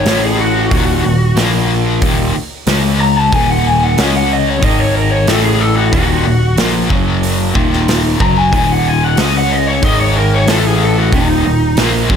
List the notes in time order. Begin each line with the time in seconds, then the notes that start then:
Already playing: C#5
0.06 A1 A2 E3 A3, snare, open hi-hat
0.24 G#4
0.40 F#4
0.71 D#1 D#2 A#2 D#3, kick, open hi-hat
1.04 D#1 D#2 A#2
1.36 A#1 A#2 F3 A#3, snare, open hi-hat
2.01 D#1 D#2 A#2 D#3, kick, open hi-hat
2.34 muted picked electric bass stroke, muted overdriven electric guitar stroke, muted distorted electric guitar stroke
2.67 C#2 C#3 G#3 C#4, snare, open hi-hat
3.00 A#5
3.18 A5
3.32 D#1 D#2 A#2 D#3 G#5, kick, open hi-hat
3.50 F#5
3.67 G#5
3.84 F#5
3.97 C#2 C#3 G#3 C#4 D#5, snare, open hi-hat
4.16 F#5
4.33 D#5
4.48 C#5
4.62 G#1 G#2 D#3 G#3 D#5, kick, open hi-hat
4.79 C#5
4.95 A#4
5.11 C#5
5.27 A1 A2 E3 A3 A4, snare, open hi-hat
5.44 G#4
5.60 A4
5.77 F#4
5.92 D#1 D#2 A#2 D#3 F#4, kick, open hi-hat
6.25 D#1 D#2 A#2
6.57 A#1 A#2 F3 A#3, snare, open hi-hat
6.90 F#1 F#2 C#3 F#3, kick
7.23 open hi-hat
7.54 D#1 D#2 A#2 D#3, kick
7.73 snare
7.88 snare, open hi-hat
8.19 F#1 F#2 C#3 F#3 A#5, kick
8.37 G#5
8.52 D#1 D#2 A#2 D#3 G#5, kick, open hi-hat
8.72 F#5
8.88 G#5
9.04 F#5
9.17 C#2 C#3 G#3 C#4 D#5, snare, open hi-hat
9.37 F#5
9.52 D#5
9.68 C#5
9.82 G#1 G#2 D#3 G#3 D#5, kick, open hi-hat
9.99 C#5
10.17 A#4
10.35 C#5
10.47 A1 A2 E3 A3 A4, snare, open hi-hat
10.67 G#4
10.83 A4
10.98 F#4
11.12 D#1 D#2 A#2 D#3 D#4, kick, open hi-hat
11.44 D#1 D#2 A#2
11.77 A#1 A#2 F3 A#3, snare, open hi-hat
12.10 F#1 F#2 C#3 F#3, kick